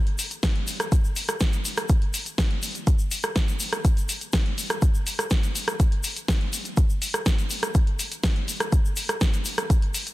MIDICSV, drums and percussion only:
0, 0, Header, 1, 2, 480
1, 0, Start_track
1, 0, Tempo, 487805
1, 1865, Time_signature, 4, 2, 24, 8
1, 9976, End_track
2, 0, Start_track
2, 0, Title_t, "Drums"
2, 66, Note_on_c, 9, 42, 38
2, 165, Note_off_c, 9, 42, 0
2, 184, Note_on_c, 9, 82, 91
2, 185, Note_on_c, 9, 46, 110
2, 283, Note_off_c, 9, 82, 0
2, 284, Note_off_c, 9, 46, 0
2, 303, Note_on_c, 9, 82, 39
2, 306, Note_on_c, 9, 42, 53
2, 401, Note_off_c, 9, 82, 0
2, 405, Note_off_c, 9, 42, 0
2, 424, Note_on_c, 9, 38, 126
2, 425, Note_on_c, 9, 36, 112
2, 425, Note_on_c, 9, 42, 81
2, 426, Note_on_c, 9, 82, 54
2, 522, Note_off_c, 9, 38, 0
2, 523, Note_off_c, 9, 36, 0
2, 523, Note_off_c, 9, 42, 0
2, 525, Note_off_c, 9, 82, 0
2, 546, Note_on_c, 9, 42, 38
2, 645, Note_off_c, 9, 42, 0
2, 665, Note_on_c, 9, 46, 90
2, 665, Note_on_c, 9, 82, 89
2, 763, Note_off_c, 9, 46, 0
2, 764, Note_off_c, 9, 82, 0
2, 786, Note_on_c, 9, 37, 76
2, 786, Note_on_c, 9, 42, 53
2, 794, Note_on_c, 9, 82, 42
2, 884, Note_off_c, 9, 37, 0
2, 884, Note_off_c, 9, 42, 0
2, 892, Note_off_c, 9, 82, 0
2, 905, Note_on_c, 9, 36, 120
2, 905, Note_on_c, 9, 42, 78
2, 907, Note_on_c, 9, 82, 50
2, 1003, Note_off_c, 9, 36, 0
2, 1003, Note_off_c, 9, 42, 0
2, 1006, Note_off_c, 9, 82, 0
2, 1029, Note_on_c, 9, 82, 35
2, 1127, Note_off_c, 9, 82, 0
2, 1142, Note_on_c, 9, 82, 85
2, 1145, Note_on_c, 9, 46, 111
2, 1240, Note_off_c, 9, 82, 0
2, 1243, Note_off_c, 9, 46, 0
2, 1265, Note_on_c, 9, 82, 45
2, 1266, Note_on_c, 9, 37, 67
2, 1266, Note_on_c, 9, 42, 55
2, 1364, Note_off_c, 9, 37, 0
2, 1364, Note_off_c, 9, 42, 0
2, 1364, Note_off_c, 9, 82, 0
2, 1380, Note_on_c, 9, 82, 54
2, 1384, Note_on_c, 9, 38, 124
2, 1385, Note_on_c, 9, 36, 107
2, 1385, Note_on_c, 9, 42, 80
2, 1478, Note_off_c, 9, 82, 0
2, 1482, Note_off_c, 9, 38, 0
2, 1483, Note_off_c, 9, 36, 0
2, 1483, Note_off_c, 9, 42, 0
2, 1504, Note_on_c, 9, 82, 41
2, 1506, Note_on_c, 9, 42, 37
2, 1603, Note_off_c, 9, 82, 0
2, 1605, Note_off_c, 9, 42, 0
2, 1625, Note_on_c, 9, 46, 96
2, 1627, Note_on_c, 9, 82, 102
2, 1723, Note_off_c, 9, 46, 0
2, 1725, Note_off_c, 9, 82, 0
2, 1739, Note_on_c, 9, 82, 40
2, 1746, Note_on_c, 9, 37, 76
2, 1746, Note_on_c, 9, 42, 56
2, 1837, Note_off_c, 9, 82, 0
2, 1845, Note_off_c, 9, 37, 0
2, 1845, Note_off_c, 9, 42, 0
2, 1858, Note_on_c, 9, 82, 53
2, 1865, Note_on_c, 9, 36, 126
2, 1865, Note_on_c, 9, 42, 78
2, 1957, Note_off_c, 9, 82, 0
2, 1963, Note_off_c, 9, 36, 0
2, 1963, Note_off_c, 9, 42, 0
2, 1986, Note_on_c, 9, 42, 35
2, 2085, Note_off_c, 9, 42, 0
2, 2105, Note_on_c, 9, 46, 109
2, 2106, Note_on_c, 9, 82, 98
2, 2203, Note_off_c, 9, 46, 0
2, 2204, Note_off_c, 9, 82, 0
2, 2226, Note_on_c, 9, 42, 51
2, 2226, Note_on_c, 9, 82, 44
2, 2324, Note_off_c, 9, 42, 0
2, 2324, Note_off_c, 9, 82, 0
2, 2344, Note_on_c, 9, 38, 124
2, 2345, Note_on_c, 9, 36, 111
2, 2345, Note_on_c, 9, 42, 78
2, 2349, Note_on_c, 9, 82, 51
2, 2442, Note_off_c, 9, 38, 0
2, 2443, Note_off_c, 9, 36, 0
2, 2443, Note_off_c, 9, 42, 0
2, 2447, Note_off_c, 9, 82, 0
2, 2466, Note_on_c, 9, 42, 37
2, 2564, Note_off_c, 9, 42, 0
2, 2584, Note_on_c, 9, 82, 96
2, 2585, Note_on_c, 9, 46, 95
2, 2683, Note_off_c, 9, 46, 0
2, 2683, Note_off_c, 9, 82, 0
2, 2705, Note_on_c, 9, 82, 40
2, 2706, Note_on_c, 9, 42, 50
2, 2804, Note_off_c, 9, 42, 0
2, 2804, Note_off_c, 9, 82, 0
2, 2824, Note_on_c, 9, 42, 77
2, 2825, Note_on_c, 9, 36, 127
2, 2828, Note_on_c, 9, 82, 52
2, 2923, Note_off_c, 9, 36, 0
2, 2923, Note_off_c, 9, 42, 0
2, 2926, Note_off_c, 9, 82, 0
2, 2940, Note_on_c, 9, 82, 42
2, 3039, Note_off_c, 9, 82, 0
2, 3064, Note_on_c, 9, 46, 113
2, 3064, Note_on_c, 9, 82, 89
2, 3162, Note_off_c, 9, 82, 0
2, 3163, Note_off_c, 9, 46, 0
2, 3179, Note_on_c, 9, 82, 44
2, 3186, Note_on_c, 9, 37, 68
2, 3186, Note_on_c, 9, 42, 52
2, 3278, Note_off_c, 9, 82, 0
2, 3284, Note_off_c, 9, 37, 0
2, 3284, Note_off_c, 9, 42, 0
2, 3303, Note_on_c, 9, 38, 122
2, 3305, Note_on_c, 9, 36, 112
2, 3305, Note_on_c, 9, 42, 76
2, 3309, Note_on_c, 9, 82, 50
2, 3402, Note_off_c, 9, 38, 0
2, 3403, Note_off_c, 9, 36, 0
2, 3403, Note_off_c, 9, 42, 0
2, 3408, Note_off_c, 9, 82, 0
2, 3425, Note_on_c, 9, 42, 36
2, 3426, Note_on_c, 9, 82, 41
2, 3524, Note_off_c, 9, 42, 0
2, 3525, Note_off_c, 9, 82, 0
2, 3540, Note_on_c, 9, 82, 102
2, 3545, Note_on_c, 9, 46, 99
2, 3639, Note_off_c, 9, 82, 0
2, 3643, Note_off_c, 9, 46, 0
2, 3666, Note_on_c, 9, 37, 78
2, 3666, Note_on_c, 9, 42, 52
2, 3670, Note_on_c, 9, 82, 40
2, 3764, Note_off_c, 9, 37, 0
2, 3764, Note_off_c, 9, 42, 0
2, 3768, Note_off_c, 9, 82, 0
2, 3785, Note_on_c, 9, 36, 119
2, 3785, Note_on_c, 9, 42, 79
2, 3787, Note_on_c, 9, 82, 53
2, 3883, Note_off_c, 9, 36, 0
2, 3883, Note_off_c, 9, 42, 0
2, 3885, Note_off_c, 9, 82, 0
2, 3906, Note_on_c, 9, 42, 35
2, 3912, Note_on_c, 9, 82, 40
2, 4005, Note_off_c, 9, 42, 0
2, 4011, Note_off_c, 9, 82, 0
2, 4025, Note_on_c, 9, 46, 112
2, 4026, Note_on_c, 9, 82, 97
2, 4123, Note_off_c, 9, 46, 0
2, 4124, Note_off_c, 9, 82, 0
2, 4146, Note_on_c, 9, 42, 51
2, 4146, Note_on_c, 9, 82, 41
2, 4244, Note_off_c, 9, 42, 0
2, 4244, Note_off_c, 9, 82, 0
2, 4260, Note_on_c, 9, 82, 54
2, 4264, Note_on_c, 9, 38, 122
2, 4265, Note_on_c, 9, 36, 106
2, 4265, Note_on_c, 9, 42, 75
2, 4359, Note_off_c, 9, 82, 0
2, 4362, Note_off_c, 9, 38, 0
2, 4363, Note_off_c, 9, 36, 0
2, 4363, Note_off_c, 9, 42, 0
2, 4386, Note_on_c, 9, 42, 35
2, 4484, Note_off_c, 9, 42, 0
2, 4505, Note_on_c, 9, 46, 94
2, 4511, Note_on_c, 9, 82, 97
2, 4603, Note_off_c, 9, 46, 0
2, 4610, Note_off_c, 9, 82, 0
2, 4625, Note_on_c, 9, 82, 39
2, 4626, Note_on_c, 9, 37, 84
2, 4626, Note_on_c, 9, 42, 50
2, 4724, Note_off_c, 9, 37, 0
2, 4724, Note_off_c, 9, 42, 0
2, 4724, Note_off_c, 9, 82, 0
2, 4744, Note_on_c, 9, 42, 76
2, 4745, Note_on_c, 9, 36, 124
2, 4745, Note_on_c, 9, 82, 54
2, 4843, Note_off_c, 9, 36, 0
2, 4843, Note_off_c, 9, 42, 0
2, 4843, Note_off_c, 9, 82, 0
2, 4867, Note_on_c, 9, 82, 39
2, 4965, Note_off_c, 9, 82, 0
2, 4984, Note_on_c, 9, 46, 111
2, 4988, Note_on_c, 9, 82, 87
2, 5083, Note_off_c, 9, 46, 0
2, 5086, Note_off_c, 9, 82, 0
2, 5106, Note_on_c, 9, 37, 69
2, 5106, Note_on_c, 9, 42, 53
2, 5114, Note_on_c, 9, 82, 46
2, 5204, Note_off_c, 9, 37, 0
2, 5204, Note_off_c, 9, 42, 0
2, 5212, Note_off_c, 9, 82, 0
2, 5220, Note_on_c, 9, 82, 58
2, 5223, Note_on_c, 9, 38, 116
2, 5224, Note_on_c, 9, 36, 107
2, 5225, Note_on_c, 9, 42, 77
2, 5319, Note_off_c, 9, 82, 0
2, 5322, Note_off_c, 9, 38, 0
2, 5323, Note_off_c, 9, 36, 0
2, 5323, Note_off_c, 9, 42, 0
2, 5345, Note_on_c, 9, 42, 35
2, 5348, Note_on_c, 9, 82, 38
2, 5444, Note_off_c, 9, 42, 0
2, 5446, Note_off_c, 9, 82, 0
2, 5464, Note_on_c, 9, 46, 96
2, 5469, Note_on_c, 9, 82, 95
2, 5563, Note_off_c, 9, 46, 0
2, 5567, Note_off_c, 9, 82, 0
2, 5586, Note_on_c, 9, 37, 84
2, 5586, Note_on_c, 9, 42, 51
2, 5588, Note_on_c, 9, 82, 39
2, 5684, Note_off_c, 9, 37, 0
2, 5684, Note_off_c, 9, 42, 0
2, 5687, Note_off_c, 9, 82, 0
2, 5705, Note_on_c, 9, 36, 114
2, 5705, Note_on_c, 9, 42, 78
2, 5708, Note_on_c, 9, 82, 50
2, 5803, Note_off_c, 9, 36, 0
2, 5803, Note_off_c, 9, 42, 0
2, 5806, Note_off_c, 9, 82, 0
2, 5826, Note_on_c, 9, 42, 36
2, 5924, Note_off_c, 9, 42, 0
2, 5941, Note_on_c, 9, 82, 92
2, 5944, Note_on_c, 9, 46, 108
2, 6039, Note_off_c, 9, 82, 0
2, 6043, Note_off_c, 9, 46, 0
2, 6066, Note_on_c, 9, 42, 51
2, 6069, Note_on_c, 9, 82, 40
2, 6164, Note_off_c, 9, 42, 0
2, 6167, Note_off_c, 9, 82, 0
2, 6183, Note_on_c, 9, 38, 118
2, 6185, Note_on_c, 9, 36, 104
2, 6185, Note_on_c, 9, 42, 78
2, 6190, Note_on_c, 9, 82, 55
2, 6282, Note_off_c, 9, 38, 0
2, 6283, Note_off_c, 9, 36, 0
2, 6283, Note_off_c, 9, 42, 0
2, 6289, Note_off_c, 9, 82, 0
2, 6306, Note_on_c, 9, 42, 36
2, 6404, Note_off_c, 9, 42, 0
2, 6424, Note_on_c, 9, 46, 91
2, 6428, Note_on_c, 9, 82, 101
2, 6523, Note_off_c, 9, 46, 0
2, 6527, Note_off_c, 9, 82, 0
2, 6543, Note_on_c, 9, 82, 43
2, 6546, Note_on_c, 9, 42, 49
2, 6641, Note_off_c, 9, 82, 0
2, 6644, Note_off_c, 9, 42, 0
2, 6662, Note_on_c, 9, 82, 54
2, 6665, Note_on_c, 9, 36, 120
2, 6665, Note_on_c, 9, 42, 76
2, 6760, Note_off_c, 9, 82, 0
2, 6763, Note_off_c, 9, 36, 0
2, 6763, Note_off_c, 9, 42, 0
2, 6787, Note_on_c, 9, 82, 34
2, 6885, Note_off_c, 9, 82, 0
2, 6905, Note_on_c, 9, 46, 109
2, 6913, Note_on_c, 9, 82, 89
2, 7003, Note_off_c, 9, 46, 0
2, 7011, Note_off_c, 9, 82, 0
2, 7026, Note_on_c, 9, 37, 69
2, 7026, Note_on_c, 9, 42, 53
2, 7029, Note_on_c, 9, 82, 44
2, 7125, Note_off_c, 9, 37, 0
2, 7125, Note_off_c, 9, 42, 0
2, 7128, Note_off_c, 9, 82, 0
2, 7144, Note_on_c, 9, 38, 114
2, 7145, Note_on_c, 9, 36, 106
2, 7145, Note_on_c, 9, 42, 76
2, 7146, Note_on_c, 9, 82, 56
2, 7242, Note_off_c, 9, 38, 0
2, 7243, Note_off_c, 9, 36, 0
2, 7244, Note_off_c, 9, 42, 0
2, 7245, Note_off_c, 9, 82, 0
2, 7266, Note_on_c, 9, 42, 36
2, 7270, Note_on_c, 9, 82, 35
2, 7364, Note_off_c, 9, 42, 0
2, 7368, Note_off_c, 9, 82, 0
2, 7381, Note_on_c, 9, 82, 89
2, 7385, Note_on_c, 9, 46, 90
2, 7479, Note_off_c, 9, 82, 0
2, 7483, Note_off_c, 9, 46, 0
2, 7506, Note_on_c, 9, 37, 83
2, 7506, Note_on_c, 9, 42, 51
2, 7510, Note_on_c, 9, 82, 44
2, 7604, Note_off_c, 9, 37, 0
2, 7604, Note_off_c, 9, 42, 0
2, 7608, Note_off_c, 9, 82, 0
2, 7622, Note_on_c, 9, 82, 47
2, 7625, Note_on_c, 9, 36, 111
2, 7625, Note_on_c, 9, 42, 82
2, 7720, Note_off_c, 9, 82, 0
2, 7723, Note_off_c, 9, 36, 0
2, 7723, Note_off_c, 9, 42, 0
2, 7746, Note_on_c, 9, 42, 36
2, 7844, Note_off_c, 9, 42, 0
2, 7865, Note_on_c, 9, 46, 103
2, 7867, Note_on_c, 9, 82, 84
2, 7963, Note_off_c, 9, 46, 0
2, 7965, Note_off_c, 9, 82, 0
2, 7986, Note_on_c, 9, 42, 53
2, 7986, Note_on_c, 9, 82, 38
2, 8084, Note_off_c, 9, 42, 0
2, 8085, Note_off_c, 9, 82, 0
2, 8103, Note_on_c, 9, 38, 112
2, 8105, Note_on_c, 9, 36, 104
2, 8105, Note_on_c, 9, 42, 82
2, 8106, Note_on_c, 9, 82, 48
2, 8202, Note_off_c, 9, 38, 0
2, 8203, Note_off_c, 9, 36, 0
2, 8203, Note_off_c, 9, 42, 0
2, 8205, Note_off_c, 9, 82, 0
2, 8225, Note_on_c, 9, 42, 37
2, 8324, Note_off_c, 9, 42, 0
2, 8344, Note_on_c, 9, 46, 85
2, 8351, Note_on_c, 9, 82, 99
2, 8443, Note_off_c, 9, 46, 0
2, 8450, Note_off_c, 9, 82, 0
2, 8466, Note_on_c, 9, 37, 87
2, 8466, Note_on_c, 9, 42, 50
2, 8471, Note_on_c, 9, 82, 36
2, 8564, Note_off_c, 9, 37, 0
2, 8564, Note_off_c, 9, 42, 0
2, 8570, Note_off_c, 9, 82, 0
2, 8584, Note_on_c, 9, 42, 79
2, 8585, Note_on_c, 9, 36, 116
2, 8587, Note_on_c, 9, 82, 50
2, 8683, Note_off_c, 9, 36, 0
2, 8683, Note_off_c, 9, 42, 0
2, 8685, Note_off_c, 9, 82, 0
2, 8712, Note_on_c, 9, 82, 36
2, 8810, Note_off_c, 9, 82, 0
2, 8821, Note_on_c, 9, 82, 85
2, 8825, Note_on_c, 9, 46, 101
2, 8920, Note_off_c, 9, 82, 0
2, 8923, Note_off_c, 9, 46, 0
2, 8946, Note_on_c, 9, 37, 72
2, 8946, Note_on_c, 9, 42, 56
2, 8946, Note_on_c, 9, 82, 36
2, 9044, Note_off_c, 9, 37, 0
2, 9044, Note_off_c, 9, 42, 0
2, 9045, Note_off_c, 9, 82, 0
2, 9064, Note_on_c, 9, 38, 112
2, 9065, Note_on_c, 9, 36, 102
2, 9065, Note_on_c, 9, 42, 79
2, 9065, Note_on_c, 9, 82, 50
2, 9162, Note_off_c, 9, 38, 0
2, 9163, Note_off_c, 9, 36, 0
2, 9163, Note_off_c, 9, 42, 0
2, 9163, Note_off_c, 9, 82, 0
2, 9186, Note_on_c, 9, 42, 38
2, 9186, Note_on_c, 9, 82, 39
2, 9284, Note_off_c, 9, 82, 0
2, 9285, Note_off_c, 9, 42, 0
2, 9299, Note_on_c, 9, 82, 92
2, 9305, Note_on_c, 9, 46, 91
2, 9397, Note_off_c, 9, 82, 0
2, 9404, Note_off_c, 9, 46, 0
2, 9424, Note_on_c, 9, 82, 35
2, 9426, Note_on_c, 9, 37, 83
2, 9426, Note_on_c, 9, 42, 53
2, 9523, Note_off_c, 9, 82, 0
2, 9525, Note_off_c, 9, 37, 0
2, 9525, Note_off_c, 9, 42, 0
2, 9545, Note_on_c, 9, 36, 109
2, 9545, Note_on_c, 9, 42, 84
2, 9553, Note_on_c, 9, 82, 48
2, 9643, Note_off_c, 9, 36, 0
2, 9643, Note_off_c, 9, 42, 0
2, 9652, Note_off_c, 9, 82, 0
2, 9666, Note_on_c, 9, 42, 37
2, 9764, Note_off_c, 9, 42, 0
2, 9785, Note_on_c, 9, 46, 103
2, 9786, Note_on_c, 9, 82, 87
2, 9883, Note_off_c, 9, 46, 0
2, 9884, Note_off_c, 9, 82, 0
2, 9906, Note_on_c, 9, 42, 54
2, 9909, Note_on_c, 9, 82, 36
2, 9976, Note_off_c, 9, 42, 0
2, 9976, Note_off_c, 9, 82, 0
2, 9976, End_track
0, 0, End_of_file